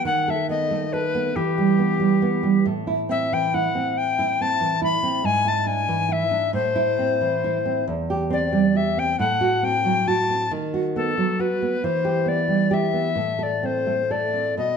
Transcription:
0.05 D#3 F#5
0.28 A4 E5
0.49 B3 D#5
0.71 A3
0.93 A4 B4
1.15 B3
1.36 E3 G4
1.58 G3
1.79 B3
2.00 G3
2.22 B3
2.43 G3
2.66 A2
2.87 E4
3.09 C4 E5
3.32 E3 G5
3.54 E4 F#5
3.75 C4
3.98 G5
4.19 E4
4.41 C4 A5
4.61 E3
4.82 E4 B5
5.03 C4
5.24 G#2 G#5
5.45 E4 A5
5.66 D4 G#5
5.88 E3
6.09 E4 E5
6.31 D4
6.53 A2 C5
6.76 E4
6.99 C4
7.21 E3
7.44 E4
7.65 C4
7.88 E2
8.10 G4
8.30 C4 D5
8.52 G3
8.75 G4 E5
8.97 C4 G5
9.19 A2 F#5
9.41 F#4
9.63 C4 G5
9.85 F#3
10.08 F#4 A5
10.30 C4
10.51 D#3
10.74 F#4
10.96 B3 A4
11.18 F#3
11.39 F#4 B4
11.62 B3
11.84 E3 C5
12.05 G4
12.26 B3 D5
12.48 G3
12.71 G4 E5
12.93 B3
13.15 A2
13.39 A4
13.43 D5
13.63 C4 C5
13.86 A3
14.11 A4 D5
14.34 C4
14.57 B2 D#5

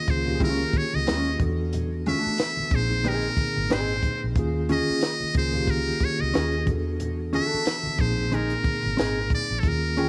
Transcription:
Already playing: D#3 A#3 C#4 F4 G#4 D#5
0.07 C#2 D#3 A#3 C#4 F4 C5, kick, closed hi-hat, muted conga
0.11 G#4
0.24 D#3 A#3 C#4 F4, low conga
0.28 G4
0.35 G#4
0.40 G#3 C#4 F4 A#4, kick, closed hi-hat, high conga
0.73 muted fingered electric bass stroke, kick, closed hi-hat, muted conga, high conga
0.78 C#5
0.93 C#2 D#5, high conga
1.07 D#2 G#3 C#4 F4, snare, closed hi-hat
1.24 closed hi-hat
1.38 E2 E3 B3 D4 F#4, kick, closed hi-hat, high conga, low conga
1.42 A4
1.73 closed hi-hat, low conga
2.06 G#3 C#4 F4 E5, closed hi-hat, muted conga, high conga
2.20 A3 D4 F#4
2.26 muted fingered electric bass stroke
2.38 snare, closed hi-hat, muted conga
2.57 muted fingered electric bass stroke, high conga
2.70 A#1 A#2 A#3 C4 D4, kick, closed hi-hat, muted conga
2.74 G#4 C5
2.79 D#4
2.90 low conga
3.04 C4 D#4 G#4, closed hi-hat, high conga
3.08 A#4
3.22 closed hi-hat
3.37 muted fingered electric bass stroke, kick, closed hi-hat, muted conga, high conga
3.56 G#1, high conga
3.70 G#1 C4 D#4 G#4 C5, snare, closed hi-hat
3.88 closed hi-hat
4.03 kick, closed hi-hat, muted conga, high conga, low conga
4.24 A#1
4.35 D#2 D#3 A#3 C#4 F4, kick, closed hi-hat, muted conga, low conga
4.39 G#4
4.69 C#4 F4 G#4 D#5, closed hi-hat, muted conga, high conga
4.90 muted fingered electric bass stroke
5.01 snare, closed hi-hat, muted conga
5.20 muted fingered electric bass stroke, high conga
5.34 C#2 D#3 A#3 C#4 F4, kick, closed hi-hat, muted conga
5.38 G#4 C5
5.52 D#3 A#3 C#4 F4, low conga
5.57 G4
5.67 A#4, kick, closed hi-hat, high conga
6.00 muted fingered electric bass stroke, kick, closed hi-hat, high conga
6.05 C#5
6.19 C#2 D#5, high conga
6.34 D#2 C#4 F4 G#4, snare, closed hi-hat
6.52 closed hi-hat
6.66 E2 E3 B3 D4 F#4, kick, closed hi-hat, muted conga, high conga, low conga
6.70 A4
7.00 closed hi-hat, muted conga, low conga
7.33 C#4 F4 G#4 E5, closed hi-hat, high conga
7.46 D4 F#4 A4
7.54 muted fingered electric bass stroke
7.65 snare, closed hi-hat, muted conga
7.83 muted fingered electric bass stroke, high conga
7.96 A#1 A#2 A#3 C4, kick, closed hi-hat, muted conga
8.01 D#4 G#4 C5
8.17 low conga
8.30 C4 D#4 G#4, closed hi-hat, muted conga, high conga
8.35 A#4
8.50 closed hi-hat
8.63 muted fingered electric bass stroke, kick, closed hi-hat, muted conga, high conga
8.83 G#1, high conga
8.97 G#1 C4 D#4 G#4, snare, closed hi-hat, muted conga
9.30 kick, closed hi-hat, muted conga, high conga, low conga
9.35 D5
9.51 A#1
9.60 D#3 A#3 A4, kick, closed hi-hat
9.64 D#2 C#4 F4 G#4 A#4, low conga
9.95 D#3 A#3 C#4 F4 G#4, closed hi-hat, muted conga, high conga
10.00 G5

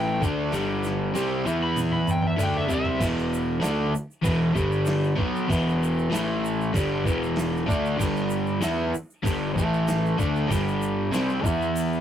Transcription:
Already playing: A1 A2 E3 A3 G5
0.21 D2 D3 A3 D4, kick, shaker
0.52 G1 G2 D3 G3, snare, open hi-hat, shaker
0.84 snare, shaker
1.14 C2 C3 G3 C4, open hi-hat, high tom, shaker
1.45 E2 E3 B3 E4, high tom, shaker
1.63 B5
1.76 open hi-hat, mid tom, shaker
1.91 B5, mid tom
2.07 G5, mid tom, shaker
2.22 mid tom
2.27 E5
2.36 D2 D3 A3 D4, mid tom, open hi-hat, shaker
2.43 G5
2.54 E5, floor tom
2.67 C3 G3 C4, floor tom, shaker
2.72 C2 E5
2.85 floor tom
2.97 E1 E2 B2 E3, kick, open hi-hat, crash
3.02 shaker
3.19 shaker
3.34 shaker
3.60 D3 A3 D4, snare, open hi-hat, shaker
3.65 D2
3.91 muted overdriven electric guitar stroke, shaker
3.96 muted fingered electric bass stroke
4.11 shaker
4.22 E1 E2 B2 E3, kick, open hi-hat, shaker
4.53 G1 G2 D3 G3, kick, shaker
4.72 shaker
4.86 snare, open hi-hat, shaker
5.04 shaker
5.16 B1 B2 F#3 B3, kick
5.36 shaker
5.48 E1 E2 B2 E3, kick, open hi-hat
5.52 shaker
5.69 shaker
5.83 shaker
5.98 shaker
6.10 A1 A2 E3 A3, snare, open hi-hat
6.15 shaker
6.45 shaker
6.61 shaker
6.73 G1 G2 D3 G3, kick, open hi-hat, shaker
7.05 E1 E2 B2 E3, kick, shaker
7.23 shaker
7.36 snare, open hi-hat, shaker
7.57 shaker
7.66 D2 D3 A3 D4, kick, shaker
7.86 shaker
7.96 G1 G2 D3 G3, kick
8.01 crash, shaker
8.17 shaker
8.30 shaker
8.47 shaker
8.61 E2 E3 B3 E4, snare, open hi-hat, shaker
8.92 muted overdriven electric guitar stroke, muted fingered electric bass stroke, shaker
9.10 shaker
9.23 G1 G2 D3 G3, kick, open hi-hat, shaker
9.55 A1 A2 E3 A3, kick, shaker
9.73 shaker
9.88 snare, open hi-hat, shaker
10.06 shaker
10.17 D2 D3 A3 D4, kick, shaker
10.36 shaker
10.47 G1 G2 D3 G3, kick
10.52 open hi-hat, shaker
10.68 shaker
10.82 shaker
11.10 C2 C3 G3 C4, open hi-hat, shaker
11.14 snare
11.29 shaker
11.44 E2 E3 B3 E4, kick, shaker
11.62 shaker
11.75 open hi-hat, shaker
11.93 shaker

